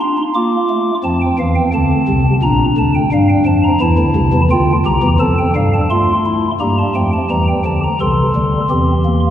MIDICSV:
0, 0, Header, 1, 2, 480
1, 0, Start_track
1, 0, Key_signature, -2, "major"
1, 0, Tempo, 695249
1, 721, Time_signature, 4, 2, 24, 8
1, 6423, End_track
2, 0, Start_track
2, 0, Title_t, "Pipe organ"
2, 0, Program_c, 0, 19
2, 6, Note_on_c, 0, 84, 88
2, 7, Note_on_c, 0, 62, 67
2, 109, Note_off_c, 0, 62, 0
2, 120, Note_on_c, 0, 63, 65
2, 153, Note_off_c, 0, 84, 0
2, 225, Note_off_c, 0, 63, 0
2, 240, Note_on_c, 0, 58, 70
2, 240, Note_on_c, 0, 86, 95
2, 241, Note_on_c, 0, 65, 72
2, 389, Note_off_c, 0, 58, 0
2, 480, Note_on_c, 0, 57, 75
2, 629, Note_off_c, 0, 57, 0
2, 652, Note_off_c, 0, 86, 0
2, 653, Note_off_c, 0, 65, 0
2, 717, Note_on_c, 0, 41, 89
2, 717, Note_on_c, 0, 81, 77
2, 718, Note_on_c, 0, 53, 88
2, 718, Note_on_c, 0, 60, 77
2, 822, Note_off_c, 0, 81, 0
2, 840, Note_on_c, 0, 79, 79
2, 866, Note_off_c, 0, 41, 0
2, 867, Note_off_c, 0, 53, 0
2, 943, Note_off_c, 0, 79, 0
2, 957, Note_on_c, 0, 52, 87
2, 959, Note_on_c, 0, 40, 79
2, 960, Note_on_c, 0, 77, 72
2, 1063, Note_off_c, 0, 77, 0
2, 1073, Note_on_c, 0, 79, 66
2, 1107, Note_off_c, 0, 52, 0
2, 1108, Note_off_c, 0, 40, 0
2, 1179, Note_off_c, 0, 79, 0
2, 1199, Note_on_c, 0, 50, 101
2, 1199, Note_on_c, 0, 81, 84
2, 1201, Note_on_c, 0, 38, 111
2, 1348, Note_off_c, 0, 50, 0
2, 1349, Note_off_c, 0, 38, 0
2, 1438, Note_on_c, 0, 36, 99
2, 1439, Note_on_c, 0, 48, 96
2, 1543, Note_off_c, 0, 60, 0
2, 1587, Note_off_c, 0, 36, 0
2, 1588, Note_off_c, 0, 48, 0
2, 1611, Note_off_c, 0, 81, 0
2, 1673, Note_on_c, 0, 46, 98
2, 1675, Note_on_c, 0, 62, 88
2, 1676, Note_on_c, 0, 34, 104
2, 1676, Note_on_c, 0, 82, 89
2, 1823, Note_off_c, 0, 46, 0
2, 1825, Note_off_c, 0, 34, 0
2, 1825, Note_off_c, 0, 82, 0
2, 1916, Note_on_c, 0, 50, 95
2, 1917, Note_on_c, 0, 38, 89
2, 1917, Note_on_c, 0, 81, 84
2, 2020, Note_off_c, 0, 81, 0
2, 2037, Note_on_c, 0, 79, 90
2, 2064, Note_off_c, 0, 50, 0
2, 2065, Note_off_c, 0, 38, 0
2, 2087, Note_off_c, 0, 62, 0
2, 2140, Note_off_c, 0, 79, 0
2, 2157, Note_on_c, 0, 43, 98
2, 2158, Note_on_c, 0, 55, 100
2, 2158, Note_on_c, 0, 62, 72
2, 2158, Note_on_c, 0, 77, 75
2, 2260, Note_off_c, 0, 77, 0
2, 2276, Note_on_c, 0, 79, 81
2, 2305, Note_off_c, 0, 43, 0
2, 2306, Note_off_c, 0, 55, 0
2, 2379, Note_off_c, 0, 79, 0
2, 2389, Note_on_c, 0, 53, 99
2, 2389, Note_on_c, 0, 81, 81
2, 2390, Note_on_c, 0, 41, 96
2, 2495, Note_off_c, 0, 81, 0
2, 2512, Note_on_c, 0, 82, 77
2, 2540, Note_off_c, 0, 41, 0
2, 2540, Note_off_c, 0, 53, 0
2, 2569, Note_off_c, 0, 62, 0
2, 2616, Note_off_c, 0, 82, 0
2, 2628, Note_on_c, 0, 40, 101
2, 2630, Note_on_c, 0, 52, 112
2, 2630, Note_on_c, 0, 64, 73
2, 2632, Note_on_c, 0, 81, 77
2, 2735, Note_off_c, 0, 40, 0
2, 2736, Note_off_c, 0, 52, 0
2, 2752, Note_on_c, 0, 38, 92
2, 2752, Note_on_c, 0, 50, 95
2, 2857, Note_off_c, 0, 38, 0
2, 2857, Note_off_c, 0, 50, 0
2, 2871, Note_on_c, 0, 36, 84
2, 2871, Note_on_c, 0, 48, 83
2, 2976, Note_off_c, 0, 36, 0
2, 2976, Note_off_c, 0, 48, 0
2, 2991, Note_on_c, 0, 52, 97
2, 2992, Note_on_c, 0, 40, 92
2, 3046, Note_off_c, 0, 64, 0
2, 3047, Note_off_c, 0, 81, 0
2, 3096, Note_off_c, 0, 52, 0
2, 3097, Note_off_c, 0, 40, 0
2, 3113, Note_on_c, 0, 79, 92
2, 3114, Note_on_c, 0, 65, 88
2, 3115, Note_on_c, 0, 38, 110
2, 3115, Note_on_c, 0, 50, 96
2, 3263, Note_off_c, 0, 79, 0
2, 3264, Note_off_c, 0, 65, 0
2, 3265, Note_off_c, 0, 38, 0
2, 3265, Note_off_c, 0, 50, 0
2, 3354, Note_on_c, 0, 67, 79
2, 3355, Note_on_c, 0, 36, 106
2, 3356, Note_on_c, 0, 82, 81
2, 3357, Note_on_c, 0, 48, 107
2, 3460, Note_off_c, 0, 36, 0
2, 3461, Note_off_c, 0, 48, 0
2, 3471, Note_on_c, 0, 52, 89
2, 3473, Note_on_c, 0, 40, 79
2, 3505, Note_off_c, 0, 67, 0
2, 3507, Note_off_c, 0, 82, 0
2, 3578, Note_off_c, 0, 52, 0
2, 3579, Note_off_c, 0, 40, 0
2, 3588, Note_on_c, 0, 53, 104
2, 3589, Note_on_c, 0, 69, 79
2, 3589, Note_on_c, 0, 81, 89
2, 3591, Note_on_c, 0, 41, 89
2, 3698, Note_off_c, 0, 81, 0
2, 3717, Note_on_c, 0, 79, 78
2, 3742, Note_off_c, 0, 53, 0
2, 3743, Note_off_c, 0, 41, 0
2, 3822, Note_off_c, 0, 79, 0
2, 3835, Note_on_c, 0, 55, 104
2, 3837, Note_on_c, 0, 77, 74
2, 3838, Note_on_c, 0, 43, 97
2, 3943, Note_off_c, 0, 77, 0
2, 3959, Note_on_c, 0, 81, 72
2, 3986, Note_off_c, 0, 55, 0
2, 3989, Note_off_c, 0, 43, 0
2, 4009, Note_off_c, 0, 69, 0
2, 4064, Note_off_c, 0, 81, 0
2, 4077, Note_on_c, 0, 65, 76
2, 4077, Note_on_c, 0, 84, 73
2, 4078, Note_on_c, 0, 57, 82
2, 4228, Note_off_c, 0, 65, 0
2, 4321, Note_on_c, 0, 64, 80
2, 4471, Note_off_c, 0, 64, 0
2, 4494, Note_off_c, 0, 84, 0
2, 4495, Note_off_c, 0, 57, 0
2, 4556, Note_on_c, 0, 82, 63
2, 4559, Note_on_c, 0, 43, 59
2, 4559, Note_on_c, 0, 58, 62
2, 4560, Note_on_c, 0, 55, 61
2, 4560, Note_on_c, 0, 67, 70
2, 4663, Note_off_c, 0, 82, 0
2, 4680, Note_on_c, 0, 81, 64
2, 4710, Note_off_c, 0, 43, 0
2, 4710, Note_off_c, 0, 58, 0
2, 4711, Note_off_c, 0, 55, 0
2, 4786, Note_off_c, 0, 81, 0
2, 4801, Note_on_c, 0, 79, 57
2, 4802, Note_on_c, 0, 41, 57
2, 4802, Note_on_c, 0, 53, 50
2, 4802, Note_on_c, 0, 57, 60
2, 4906, Note_off_c, 0, 79, 0
2, 4922, Note_on_c, 0, 81, 63
2, 4951, Note_off_c, 0, 41, 0
2, 4951, Note_off_c, 0, 53, 0
2, 4951, Note_off_c, 0, 57, 0
2, 5026, Note_off_c, 0, 81, 0
2, 5042, Note_on_c, 0, 40, 74
2, 5042, Note_on_c, 0, 55, 78
2, 5042, Note_on_c, 0, 82, 70
2, 5044, Note_on_c, 0, 52, 72
2, 5146, Note_off_c, 0, 82, 0
2, 5164, Note_on_c, 0, 79, 68
2, 5191, Note_off_c, 0, 55, 0
2, 5192, Note_off_c, 0, 40, 0
2, 5193, Note_off_c, 0, 52, 0
2, 5268, Note_off_c, 0, 79, 0
2, 5283, Note_on_c, 0, 53, 78
2, 5284, Note_on_c, 0, 81, 66
2, 5285, Note_on_c, 0, 38, 69
2, 5285, Note_on_c, 0, 50, 68
2, 5388, Note_off_c, 0, 81, 0
2, 5389, Note_off_c, 0, 67, 0
2, 5410, Note_on_c, 0, 82, 61
2, 5433, Note_off_c, 0, 53, 0
2, 5434, Note_off_c, 0, 38, 0
2, 5435, Note_off_c, 0, 50, 0
2, 5512, Note_off_c, 0, 82, 0
2, 5527, Note_on_c, 0, 84, 68
2, 5528, Note_on_c, 0, 36, 64
2, 5529, Note_on_c, 0, 48, 72
2, 5529, Note_on_c, 0, 69, 70
2, 5530, Note_on_c, 0, 52, 73
2, 5676, Note_off_c, 0, 36, 0
2, 5677, Note_off_c, 0, 48, 0
2, 5678, Note_off_c, 0, 52, 0
2, 5768, Note_on_c, 0, 50, 63
2, 5769, Note_on_c, 0, 38, 59
2, 5769, Note_on_c, 0, 55, 70
2, 5916, Note_off_c, 0, 50, 0
2, 5916, Note_off_c, 0, 55, 0
2, 5917, Note_off_c, 0, 38, 0
2, 5941, Note_off_c, 0, 69, 0
2, 6006, Note_on_c, 0, 67, 64
2, 6008, Note_on_c, 0, 40, 61
2, 6008, Note_on_c, 0, 52, 67
2, 6008, Note_on_c, 0, 60, 75
2, 6156, Note_off_c, 0, 60, 0
2, 6249, Note_on_c, 0, 58, 68
2, 6351, Note_off_c, 0, 84, 0
2, 6396, Note_off_c, 0, 58, 0
2, 6418, Note_off_c, 0, 67, 0
2, 6419, Note_off_c, 0, 40, 0
2, 6419, Note_off_c, 0, 52, 0
2, 6423, End_track
0, 0, End_of_file